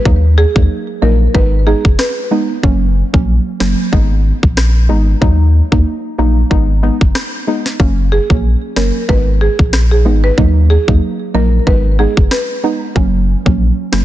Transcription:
0.05 D#2 F#3 A#3 D#4, kick
0.38 G#4
0.55 D#2 F#3 A#3 D#4, kick
1.02 A#1 F#3 A#3 D#4 A#4
1.34 G#1 G#3 B3 D#4 B4, kick
1.66 G#3 B3 D#4 G#4
1.85 F#1, kick
1.99 B4, cross-stick, snare
2.31 G#3 B3 D#4
2.63 F#1 F#3 A#3 C#4, kick
3.13 A#1 F#3 A#3 C#4, kick
3.60 F#1 F#3 A#3 C#4, cross-stick, snare
3.92 G#1 G#3 B3 D#4, kick
4.43 A#1, kick
4.57 cross-stick, snare
4.89 G#1 G#3 B3 D#4
5.21 D#2 F#3 A#3 D#4, kick
5.72 D#2 F#3 A#3 D#4, kick
6.18 A#1 F#3 A#3 D#4
6.50 G#1 G#3 B3 D#4, kick
6.83 G#3 B3 D#4
7.01 F#1, kick
7.15 cross-stick, snare
7.47 G#3 B3 D#4
7.66 snare
7.80 F#1 F#3 A#3 C#4, kick
8.12 G#4
8.30 A#1 F#3 A#3 C#4, kick
8.76 F#1 F#3 A#3 C#4 A#4, cross-stick, snare
9.09 G#1 G#3 B3 D#4 B4, kick
9.41 G#4
9.59 A#1, kick
9.73 cross-stick, snare
9.91 G#4
10.05 G#1 G#3 B3 D#4
10.24 B4
10.38 D#2 F#3 A#3 D#4, kick
10.70 G#4
10.88 D#2 F#3 A#3 D#4, kick
11.34 A#1 F#3 A#3 D#4 A#4
11.67 G#1 G#3 B3 D#4 B4, kick
11.99 G#3 B3 D#4 G#4
12.17 F#1, kick
12.31 B4, cross-stick, snare
12.63 G#3 B3 D#4
12.95 F#1 F#3 A#3 C#4, kick
13.46 A#1 F#3 A#3 C#4, kick
13.92 F#1 F#3 A#3 C#4, cross-stick, snare

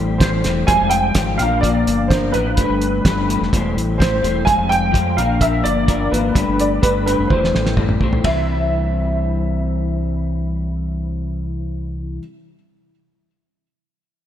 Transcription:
Already playing: A1 E2 E3 G3 A3 G4 C5
0.18 E2 E3 G3 A3 G4 C5, kick, snare, closed hi-hat
0.23 C5
0.44 E1 E2 E3 G3 A3 G4 C5, snare, closed hi-hat
0.67 F1 F3 G3 G#3 F4 C5 G#5, kick, closed hi-hat
0.81 F1
0.89 G5, closed hi-hat
1.15 G#1 F3 G3 G#3 F4 C5, kick, snare, closed hi-hat
1.38 A#1 A#2 F3 A#3 D4 F5, closed hi-hat
1.42 F4 A#4
1.61 A#2 F3 D5, kick, closed hi-hat
1.65 A#3 D4 F4 A#4
1.87 G1, closed hi-hat
2.08 A#2 F3 A#3 C5, kick, snare, closed hi-hat
2.12 D4 F4 A#4
2.32 A1 A#2 F3 A#3 D4 F4 B4, closed hi-hat
2.36 A#4
2.57 G1 G3 A3 D4 G4 B4, kick, closed hi-hat
2.70 G1
2.82 closed hi-hat
3.05 G1 G3 A3 D4 G4 B4, kick, snare, closed hi-hat
3.29 G3 A3 D4 G4 B4, closed hi-hat
3.41 F1, snare
3.53 E1 E2 E3 G3 A3 G4 C5, kick, closed hi-hat
3.76 A1, closed hi-hat
3.98 E2 E3 G3 A3 G4 C5, kick, closed hi-hat
4.02 snare
4.22 E1 E2 E3 G3 A3 G4 C5, closed hi-hat
4.45 F1 F3 G3 G#3 F4 C5 G#5, kick, closed hi-hat
4.58 F1
4.69 G5, closed hi-hat
4.91 F2 F3 G3 G#3 F4 C5, kick, closed hi-hat
5.17 A#1 A#2 F3 A#3 D4 F4 A#4 F5, closed hi-hat
5.40 A#2 F3 A#3 D4 F4 A#4 E5, kick, closed hi-hat
5.64 G1 D5, closed hi-hat
5.87 A#2 F3 A#3 D4 F4 A#4, kick, closed hi-hat
6.11 G#1 A#2 F3 A#3 D4 F4 A#4 B4, closed hi-hat
6.35 G1 G3 A3 D4 G4 B4, kick, closed hi-hat
6.48 G1
6.59 D5, closed hi-hat
6.81 G1 G3 A3 D4 G4 B4, kick, closed hi-hat
7.06 G3 A3 D4 G4 B4, closed hi-hat
7.19 F1
7.27 E1 E2 E3 A3 C5, kick
7.31 G3 G4 C5, high tom
7.44 snare
7.54 A1, snare
7.66 snare
7.76 E2 E3 G3 A3 G4 C5, kick, mid tom
7.89 mid tom
8.01 B1 E2 E3 G3 A3 G4 C5, kick
8.13 floor tom
8.24 C2 C3 E3 G3 C4 E4 C5 E5, kick, ride

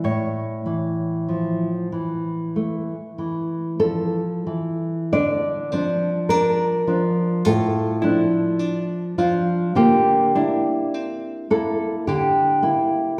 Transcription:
0.04 A2 C#5
0.66 E3
1.29 F3
1.92 E3
2.56 A3
3.18 E3
3.80 F3 A4
4.47 E3
5.13 D3 D4 D5
5.72 F3 C4 D4
6.29 D4 A#4
6.87 F3 D4
7.45 A2 F4 A4
8.02 F3 D4 E4
8.59 D4
9.18 F3 C4 D4 F4
9.75 D3 A#3 G4
10.35 A#3 D4 E4
10.94 C4
11.50 A#3 E4 A4
12.07 D3 A#3 G4
12.62 A#3 E4

